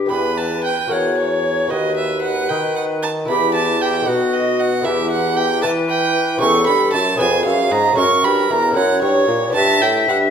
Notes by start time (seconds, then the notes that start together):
Already playing: G4
0.06 E2 B3 G4 B4 B5
0.11 E2 B4
0.37 A5
0.64 G5
0.88 E2 F#4 A#4 C#5 F#5
1.18 C#5
1.68 D#2 F#4 B4 D#5
1.97 E5
2.22 F#5
2.49 D#3 G5
2.76 F#5
3.03 A5
3.25 E2 E4 G4 B4 B5
3.54 A5
3.81 G5
4.02 A3 D#4 B4
4.07 B2 F#4 F#5
4.33 D#5
4.59 F#5
4.81 E2 B3 E4 G4 B4 E5
5.11 F#5
5.37 G5
5.62 E3 B4 A5
5.89 G5
6.38 C#4 G4 A#4 B4 C#6
6.42 E2
6.46 A4
6.67 G2 B5
6.93 F#2 A5
7.15 C#4 G#4 B4
7.19 F2 G#5
7.45 F#2 F5
7.71 G#2 A#5
7.92 C#4 F#4 A#4
7.97 F#2 A#4 C#6
8.23 G2 B5
8.50 E2 A#5
8.71 C#4 E4 A#4
8.76 F#2 C#5 F#5
9.02 G2 C#5
9.27 A#2
9.50 B3 D4 B4
9.54 G2 E5 A5
9.81 A2 G5
10.08 G2 F#5